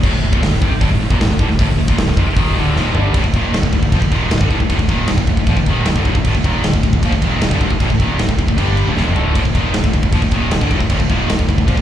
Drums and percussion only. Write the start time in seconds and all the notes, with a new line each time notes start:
0.03 kick, crash
0.33 kick
0.43 snare, open hi-hat
0.62 kick
0.81 kick, open hi-hat
1.10 kick
1.21 snare, open hi-hat
1.39 kick
1.51 snare
1.59 kick, open hi-hat
1.88 kick
1.98 snare, open hi-hat
2.17 kick
2.37 kick, open hi-hat
2.76 snare
2.95 floor tom
3.14 kick, crash
3.24 kick
3.34 kick, crash
3.54 snare, crash
3.63 kick
3.72 kick, crash
3.83 kick
3.92 kick, crash
4.02 kick
4.12 kick, crash
4.31 snare, crash
4.41 kick
4.50 kick, crash
4.60 kick
4.70 kick, crash
4.79 kick
4.88 kick, crash
5.07 snare, crash
5.18 kick
5.27 kick, crash
5.37 kick
5.47 kick, crash
5.57 kick
5.66 kick, crash
5.85 snare, crash
5.96 kick
6.05 kick, crash
6.15 kick
6.25 kick, crash
6.35 kick
6.44 kick, crash
6.64 snare, crash
6.73 kick
6.83 kick, crash
6.93 kick
7.03 kick, crash
7.12 kick
7.22 kick, crash
7.41 snare, crash
7.51 kick
7.61 kick, crash
7.70 kick
7.80 kick, crash
7.90 kick
8.00 kick, crash
8.19 snare, crash
8.29 kick
8.39 kick, crash
8.48 kick
8.58 kick, crash
8.77 crash
8.97 snare
9.16 floor tom
9.35 kick, crash
9.45 kick
9.55 kick, crash
9.74 snare, crash
9.84 kick
9.93 kick, crash
10.03 kick
10.12 kick, crash
10.22 kick
10.31 kick, crash
10.51 snare, crash
10.61 kick
10.71 kick, crash
10.80 kick
10.90 kick, crash
11.00 kick
11.09 kick, crash
11.29 snare, crash
11.39 kick
11.49 kick, crash
11.58 kick
11.68 kick, crash
11.77 kick